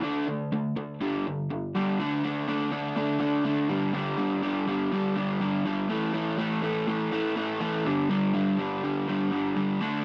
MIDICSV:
0, 0, Header, 1, 2, 480
1, 0, Start_track
1, 0, Tempo, 488599
1, 36, Time_signature, 4, 2, 24, 8
1, 9871, End_track
2, 0, Start_track
2, 0, Title_t, "Overdriven electric guitar"
2, 0, Program_c, 0, 29
2, 31, Note_on_c, 0, 50, 87
2, 37, Note_on_c, 0, 62, 98
2, 39, Note_on_c, 0, 57, 93
2, 259, Note_off_c, 0, 50, 0
2, 262, Note_off_c, 0, 62, 0
2, 263, Note_off_c, 0, 57, 0
2, 275, Note_on_c, 0, 50, 79
2, 277, Note_on_c, 0, 57, 87
2, 491, Note_off_c, 0, 50, 0
2, 492, Note_off_c, 0, 57, 0
2, 514, Note_on_c, 0, 50, 69
2, 516, Note_on_c, 0, 57, 87
2, 731, Note_off_c, 0, 50, 0
2, 732, Note_off_c, 0, 57, 0
2, 750, Note_on_c, 0, 50, 64
2, 754, Note_on_c, 0, 57, 74
2, 968, Note_off_c, 0, 50, 0
2, 971, Note_off_c, 0, 57, 0
2, 991, Note_on_c, 0, 43, 101
2, 997, Note_on_c, 0, 50, 106
2, 1000, Note_on_c, 0, 55, 96
2, 1218, Note_off_c, 0, 43, 0
2, 1222, Note_off_c, 0, 50, 0
2, 1223, Note_off_c, 0, 55, 0
2, 1247, Note_on_c, 0, 43, 71
2, 1249, Note_on_c, 0, 50, 81
2, 1456, Note_off_c, 0, 43, 0
2, 1458, Note_off_c, 0, 50, 0
2, 1477, Note_on_c, 0, 43, 81
2, 1479, Note_on_c, 0, 50, 76
2, 1692, Note_off_c, 0, 43, 0
2, 1692, Note_off_c, 0, 50, 0
2, 1717, Note_on_c, 0, 43, 99
2, 1720, Note_on_c, 0, 50, 98
2, 1724, Note_on_c, 0, 55, 109
2, 1941, Note_off_c, 0, 43, 0
2, 1942, Note_off_c, 0, 50, 0
2, 1944, Note_off_c, 0, 55, 0
2, 1957, Note_on_c, 0, 50, 89
2, 1962, Note_on_c, 0, 57, 100
2, 1967, Note_on_c, 0, 62, 104
2, 2188, Note_off_c, 0, 50, 0
2, 2193, Note_off_c, 0, 57, 0
2, 2200, Note_on_c, 0, 50, 77
2, 2205, Note_on_c, 0, 57, 86
2, 2206, Note_off_c, 0, 62, 0
2, 2210, Note_on_c, 0, 62, 93
2, 2419, Note_off_c, 0, 50, 0
2, 2429, Note_off_c, 0, 57, 0
2, 2431, Note_on_c, 0, 50, 86
2, 2438, Note_off_c, 0, 62, 0
2, 2441, Note_on_c, 0, 57, 87
2, 2442, Note_on_c, 0, 62, 97
2, 2655, Note_off_c, 0, 50, 0
2, 2664, Note_off_c, 0, 57, 0
2, 2667, Note_on_c, 0, 50, 81
2, 2673, Note_off_c, 0, 62, 0
2, 2676, Note_on_c, 0, 57, 79
2, 2676, Note_on_c, 0, 62, 85
2, 2897, Note_off_c, 0, 50, 0
2, 2903, Note_off_c, 0, 57, 0
2, 2908, Note_off_c, 0, 62, 0
2, 2908, Note_on_c, 0, 50, 100
2, 2914, Note_on_c, 0, 57, 92
2, 2920, Note_on_c, 0, 62, 113
2, 3130, Note_off_c, 0, 50, 0
2, 3134, Note_off_c, 0, 57, 0
2, 3137, Note_off_c, 0, 62, 0
2, 3142, Note_on_c, 0, 50, 90
2, 3146, Note_on_c, 0, 57, 91
2, 3149, Note_on_c, 0, 62, 88
2, 3374, Note_off_c, 0, 50, 0
2, 3376, Note_off_c, 0, 57, 0
2, 3381, Note_off_c, 0, 62, 0
2, 3386, Note_on_c, 0, 50, 83
2, 3387, Note_on_c, 0, 57, 91
2, 3393, Note_on_c, 0, 62, 81
2, 3614, Note_off_c, 0, 50, 0
2, 3615, Note_off_c, 0, 57, 0
2, 3618, Note_off_c, 0, 62, 0
2, 3622, Note_on_c, 0, 43, 92
2, 3628, Note_on_c, 0, 50, 99
2, 3630, Note_on_c, 0, 55, 107
2, 3856, Note_off_c, 0, 43, 0
2, 3861, Note_off_c, 0, 50, 0
2, 3864, Note_off_c, 0, 55, 0
2, 3868, Note_on_c, 0, 43, 92
2, 3873, Note_on_c, 0, 50, 104
2, 3876, Note_on_c, 0, 55, 111
2, 4086, Note_off_c, 0, 43, 0
2, 4093, Note_off_c, 0, 50, 0
2, 4094, Note_off_c, 0, 55, 0
2, 4098, Note_on_c, 0, 43, 77
2, 4105, Note_on_c, 0, 50, 83
2, 4106, Note_on_c, 0, 55, 88
2, 4339, Note_off_c, 0, 43, 0
2, 4343, Note_off_c, 0, 50, 0
2, 4346, Note_off_c, 0, 55, 0
2, 4351, Note_on_c, 0, 43, 81
2, 4355, Note_on_c, 0, 50, 94
2, 4358, Note_on_c, 0, 55, 90
2, 4574, Note_off_c, 0, 43, 0
2, 4581, Note_off_c, 0, 50, 0
2, 4585, Note_on_c, 0, 43, 80
2, 4586, Note_off_c, 0, 55, 0
2, 4593, Note_on_c, 0, 50, 86
2, 4598, Note_on_c, 0, 55, 95
2, 4819, Note_off_c, 0, 43, 0
2, 4821, Note_off_c, 0, 50, 0
2, 4825, Note_off_c, 0, 55, 0
2, 4830, Note_on_c, 0, 43, 101
2, 4833, Note_on_c, 0, 50, 96
2, 4836, Note_on_c, 0, 55, 114
2, 5056, Note_off_c, 0, 43, 0
2, 5063, Note_off_c, 0, 50, 0
2, 5067, Note_on_c, 0, 43, 88
2, 5071, Note_off_c, 0, 55, 0
2, 5075, Note_on_c, 0, 50, 92
2, 5083, Note_on_c, 0, 55, 100
2, 5294, Note_off_c, 0, 43, 0
2, 5303, Note_off_c, 0, 50, 0
2, 5306, Note_off_c, 0, 55, 0
2, 5306, Note_on_c, 0, 43, 88
2, 5315, Note_on_c, 0, 50, 87
2, 5318, Note_on_c, 0, 55, 84
2, 5542, Note_off_c, 0, 43, 0
2, 5545, Note_off_c, 0, 50, 0
2, 5552, Note_off_c, 0, 55, 0
2, 5554, Note_on_c, 0, 43, 81
2, 5556, Note_on_c, 0, 50, 95
2, 5563, Note_on_c, 0, 55, 90
2, 5778, Note_off_c, 0, 43, 0
2, 5779, Note_off_c, 0, 50, 0
2, 5783, Note_off_c, 0, 55, 0
2, 5788, Note_on_c, 0, 45, 100
2, 5796, Note_on_c, 0, 52, 103
2, 5796, Note_on_c, 0, 57, 106
2, 6016, Note_off_c, 0, 45, 0
2, 6019, Note_off_c, 0, 52, 0
2, 6026, Note_off_c, 0, 57, 0
2, 6028, Note_on_c, 0, 45, 87
2, 6030, Note_on_c, 0, 52, 84
2, 6038, Note_on_c, 0, 57, 94
2, 6256, Note_off_c, 0, 45, 0
2, 6261, Note_off_c, 0, 52, 0
2, 6264, Note_off_c, 0, 57, 0
2, 6267, Note_on_c, 0, 45, 98
2, 6273, Note_on_c, 0, 52, 88
2, 6276, Note_on_c, 0, 57, 92
2, 6494, Note_off_c, 0, 45, 0
2, 6504, Note_off_c, 0, 52, 0
2, 6505, Note_on_c, 0, 45, 88
2, 6509, Note_off_c, 0, 57, 0
2, 6515, Note_on_c, 0, 52, 85
2, 6521, Note_on_c, 0, 57, 94
2, 6741, Note_off_c, 0, 45, 0
2, 6747, Note_off_c, 0, 52, 0
2, 6750, Note_off_c, 0, 57, 0
2, 6753, Note_on_c, 0, 45, 98
2, 6759, Note_on_c, 0, 52, 107
2, 6762, Note_on_c, 0, 57, 109
2, 6978, Note_off_c, 0, 45, 0
2, 6985, Note_off_c, 0, 52, 0
2, 6989, Note_off_c, 0, 57, 0
2, 6990, Note_on_c, 0, 45, 88
2, 6996, Note_on_c, 0, 52, 101
2, 7001, Note_on_c, 0, 57, 108
2, 7214, Note_off_c, 0, 45, 0
2, 7224, Note_off_c, 0, 52, 0
2, 7226, Note_off_c, 0, 57, 0
2, 7226, Note_on_c, 0, 45, 77
2, 7236, Note_on_c, 0, 52, 81
2, 7238, Note_on_c, 0, 57, 94
2, 7460, Note_off_c, 0, 52, 0
2, 7461, Note_off_c, 0, 45, 0
2, 7468, Note_off_c, 0, 57, 0
2, 7471, Note_on_c, 0, 52, 99
2, 7472, Note_on_c, 0, 45, 94
2, 7480, Note_on_c, 0, 57, 105
2, 7698, Note_off_c, 0, 45, 0
2, 7698, Note_off_c, 0, 52, 0
2, 7702, Note_off_c, 0, 57, 0
2, 7721, Note_on_c, 0, 43, 95
2, 7724, Note_on_c, 0, 50, 108
2, 7728, Note_on_c, 0, 55, 101
2, 7939, Note_off_c, 0, 43, 0
2, 7943, Note_off_c, 0, 50, 0
2, 7949, Note_off_c, 0, 55, 0
2, 7950, Note_on_c, 0, 43, 87
2, 7955, Note_on_c, 0, 50, 90
2, 7961, Note_on_c, 0, 55, 102
2, 8176, Note_off_c, 0, 43, 0
2, 8182, Note_off_c, 0, 50, 0
2, 8186, Note_off_c, 0, 55, 0
2, 8188, Note_on_c, 0, 43, 92
2, 8194, Note_on_c, 0, 50, 87
2, 8198, Note_on_c, 0, 55, 93
2, 8422, Note_off_c, 0, 43, 0
2, 8429, Note_off_c, 0, 50, 0
2, 8429, Note_off_c, 0, 55, 0
2, 8433, Note_on_c, 0, 43, 79
2, 8440, Note_on_c, 0, 50, 91
2, 8441, Note_on_c, 0, 55, 93
2, 8669, Note_off_c, 0, 43, 0
2, 8673, Note_off_c, 0, 50, 0
2, 8678, Note_off_c, 0, 55, 0
2, 8681, Note_on_c, 0, 43, 97
2, 8684, Note_on_c, 0, 50, 101
2, 8690, Note_on_c, 0, 55, 114
2, 8907, Note_off_c, 0, 43, 0
2, 8914, Note_off_c, 0, 50, 0
2, 8918, Note_off_c, 0, 55, 0
2, 8919, Note_on_c, 0, 43, 81
2, 8925, Note_on_c, 0, 50, 92
2, 8930, Note_on_c, 0, 55, 101
2, 9141, Note_off_c, 0, 43, 0
2, 9148, Note_off_c, 0, 50, 0
2, 9149, Note_off_c, 0, 55, 0
2, 9153, Note_on_c, 0, 43, 78
2, 9160, Note_on_c, 0, 50, 95
2, 9161, Note_on_c, 0, 55, 77
2, 9379, Note_off_c, 0, 43, 0
2, 9386, Note_off_c, 0, 50, 0
2, 9388, Note_off_c, 0, 55, 0
2, 9391, Note_on_c, 0, 43, 86
2, 9398, Note_on_c, 0, 50, 83
2, 9400, Note_on_c, 0, 55, 102
2, 9619, Note_off_c, 0, 43, 0
2, 9623, Note_off_c, 0, 50, 0
2, 9623, Note_off_c, 0, 55, 0
2, 9633, Note_on_c, 0, 50, 92
2, 9639, Note_on_c, 0, 57, 102
2, 9645, Note_on_c, 0, 62, 100
2, 9866, Note_off_c, 0, 50, 0
2, 9871, Note_off_c, 0, 57, 0
2, 9871, Note_off_c, 0, 62, 0
2, 9871, End_track
0, 0, End_of_file